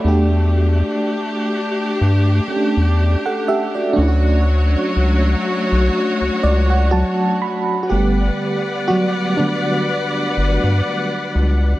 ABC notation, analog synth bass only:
X:1
M:4/4
L:1/16
Q:"Swing 16ths" 1/4=61
K:Glyd
V:1 name="Analog synth bass" clef=bass
E,,4 z4 G,,2 z E,,2 z3 | D,,4 C,,2 z B,,, z C,, C,,3 z3 | G,,,2 z8 G,,, G,, z2 C,,2 |]